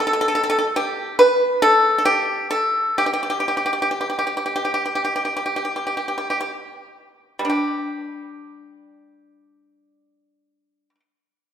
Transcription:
Already playing: B2
0.00 A4
0.07 A4
0.13 A4
0.21 A4
0.28 A4
0.35 A4
0.43 A4
0.50 A4
0.59 A4
0.76 G4
1.19 B4
1.62 A4
1.98 A4
2.05 G4
2.51 A4
2.98 G4
3.06 G4
3.14 G4
3.23 G4
3.30 G4
3.40 G4
3.48 G4
3.57 G4
3.66 G4
3.73 G4
3.82 G4
3.91 G4
4.01 G4
4.10 G4
4.19 G4
4.27 G4
4.37 G4
4.46 G4
4.56 G4
4.65 G4
4.74 G4
4.86 G4
4.95 G4
5.05 G4
5.16 G4
5.25 G4
5.37 G4
5.46 G4
5.56 G4
5.65 G4
5.76 G4
5.87 G4
5.97 G4
6.08 G4
6.18 G4
6.30 G4
6.41 G4
7.39 G3
7.45 D4
7.50 G4

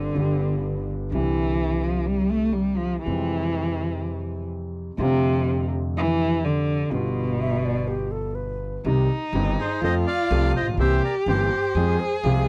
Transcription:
Already playing: G1 G2 D3 G3 C4 G4
0.15 G1 G2 D3 G3 B3
0.19 G4
1.12 C2 C3 D3 E3 G3 C4
1.16 E4
1.83 F3
2.06 G3
2.31 A3
2.53 G3
2.77 F3
3.02 C3 E3
3.07 F2 G3 G#3 C4 G4
4.98 F2 C3 D3 A3 C4
5.03 F5
5.97 E3
6.45 D3
6.91 G1 G2 B2 D3 G3 B3
6.95 F4
7.41 E5
7.64 D5
7.88 G4
8.11 A4
8.35 B4
8.85 C2 C3 D#3 G3 C4 D#4 G4
9.33 G1 G2 D#3 G3 C4 G4
9.59 G#4 C5
9.81 F2 F3 A3 C4 F4 A4 C5 D#5
10.07 D5 F5
10.31 C2 C3 F3 A3 C4 A4
10.56 C5 D#5
10.61 A1
10.66 A#1
10.71 B1
10.77 C2 C3 E3 A#3 C4 G4 C5 E5
11.04 A#4 D5
11.26 G1 G2 E3 A#3 C4 G4 C5
11.75 F2 F3 G#3 C4 G#4
12.00 C5
12.23 C2 C3 F3 G#3 C4 G#4 F5

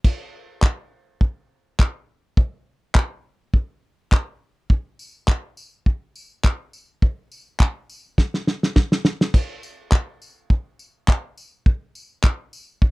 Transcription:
0.04 kick, crash
0.62 kick, clap
1.21 kick
1.79 kick, clap
2.37 kick
2.95 kick, clap
3.54 kick
4.12 kick, clap
4.70 kick
4.99 tambourine
5.28 kick, clap
5.57 tambourine
5.86 kick
6.16 tambourine
6.44 kick, clap
6.73 tambourine
7.02 kick
7.32 tambourine
7.60 kick, clap
7.89 tambourine
8.18 kick, snare
8.34 snare
8.47 snare
8.63 snare
8.76 kick, snare
8.92 snare
9.05 snare
9.21 snare
9.34 kick, crash
9.63 tambourine
9.92 kick, clap
10.22 tambourine
10.50 kick
10.79 tambourine
11.08 kick, clap
11.37 tambourine
11.66 kick
11.95 tambourine
12.23 kick, clap
12.53 tambourine
12.82 kick

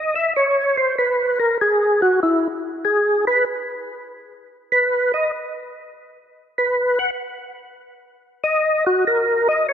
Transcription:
Already playing: D#5
0.16 E5
0.36 C#5
0.77 C5
0.98 B4
1.40 A#4
1.61 G#4
2.02 F#4
2.23 E4
2.85 G#4
3.27 B4
4.72 B4
5.14 D#5
6.58 B4
6.99 F#5
8.44 D#5
8.86 F#4
9.07 A#4
9.49 D#5
9.69 C#5

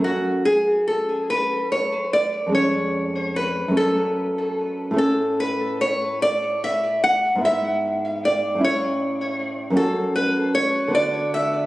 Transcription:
Already playing: F#2 A3
0.00 C#4 F#4
0.45 G#4
0.88 A4
1.30 B4
1.72 C#5
2.13 D5
2.46 F2 G#3
2.52 C#4 C#5
3.36 B4
3.68 F#2 A3
3.74 C#4 A4
4.91 A2 A3
4.97 C#4 A4
5.40 B4
5.81 C#5
6.22 D5
6.64 E5
7.04 F#5
7.35 G#2 B3
7.41 E4
7.45 E5
8.25 D5
8.55 A2 C#4
8.61 E4 C#5
9.70 F#2 C#4
9.76 F#4 A4
10.16 B4
10.55 C#5
10.88 D3 B3
10.93 F#4 D5
11.34 E5

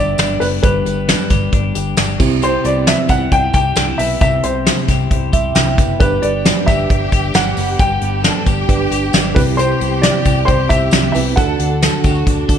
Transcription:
Already playing: G1 G2 D3 B3 D4 G4 B4 D5
0.18 G1 D4, snare, closed hi-hat, tambourine
0.40 F#1 B3 B4, open hi-hat, tambourine
0.63 G1 G2 G4 B4, kick, closed hi-hat, tambourine
0.85 G1 B3, closed hi-hat, tambourine
1.08 D4, snare, closed hi-hat, tambourine
1.30 G1 G4, kick, closed hi-hat, tambourine
1.52 G1 D4, kick, closed hi-hat, tambourine
1.75 G1 G4, closed hi-hat, tambourine
1.97 G1 D4, snare, closed hi-hat, tambourine
2.19 C2 C3 C4 E4 G4, kick, tambourine, crash
2.42 C3 G4 C5, closed hi-hat, tambourine
2.64 C2 B3 D5, closed hi-hat, tambourine
2.86 E4 E5, snare, closed hi-hat, tambourine
3.09 C2 G4 F#5, kick, closed hi-hat, tambourine
3.31 C2 D4 G5, kick, closed hi-hat
3.43 E4
3.54 C2 G4 G5, kick, closed hi-hat, tambourine
3.76 C2 D4, snare, closed hi-hat, tambourine
3.87 E4
3.98 B1 B3 E5, open hi-hat, tambourine
4.21 C2 C3 G4 E5, kick, closed hi-hat, tambourine
4.43 C2 C5, closed hi-hat, tambourine
4.65 E4, snare, closed hi-hat, tambourine
4.88 C2 G4, kick, snare, closed hi-hat, tambourine
5.10 C2 E4, kick, closed hi-hat
5.33 C2 G4 E5, kick, closed hi-hat, tambourine
5.55 C2 E4 G5, snare, closed hi-hat, tambourine
5.77 F#1 B3, kick, closed hi-hat, tambourine
5.99 G1 G2 D4 G4 B4, kick, closed hi-hat, tambourine
6.22 G1 B3 D5, closed hi-hat
6.45 D4, snare, closed hi-hat, tambourine
6.66 G1 G4 E5, kick, snare, closed hi-hat, tambourine
6.90 G1 D4, kick, closed hi-hat
7.12 G1 G4, kick, closed hi-hat, tambourine
7.34 G1 D4 F#5, snare, closed hi-hat, tambourine
7.57 F#1 B3, open hi-hat, tambourine
7.79 G1 G2 G4 G5, kick, closed hi-hat, tambourine
8.01 G1 B3, closed hi-hat
8.23 D4 A4, snare, closed hi-hat, tambourine
8.46 G1 G4, kick, closed hi-hat, tambourine
8.69 G1 D4 G4 B4, kick, closed hi-hat, tambourine
8.91 G1 G4, closed hi-hat, tambourine
9.13 G1 D4, snare, closed hi-hat, tambourine
9.35 C2 C3 C4 E4 G4 B4, kick, open hi-hat, tambourine
9.57 C3 G4 C5, closed hi-hat, tambourine
9.81 C2 B3, closed hi-hat
10.02 E4 D5, snare, closed hi-hat, tambourine
10.25 C2 G4, kick, closed hi-hat, tambourine
10.45 C2 E4 C5, kick, closed hi-hat, tambourine
10.69 C2 G4 E5, kick, closed hi-hat, tambourine
10.91 C2 D4, snare, closed hi-hat, tambourine
11.04 E4
11.12 C2 B3 C4 E4 B4 E5, open hi-hat, tambourine
11.36 D2 D3 D4 A4 F#5, kick, closed hi-hat, tambourine
11.59 D2 D4, closed hi-hat, tambourine
11.82 F#4 A4, snare, closed hi-hat, tambourine
12.04 D2 F#4 G4, kick, closed hi-hat, tambourine
12.15 A4
12.27 D2 D4 F#4, kick, closed hi-hat, tambourine
12.49 D2 A4, kick, closed hi-hat, tambourine

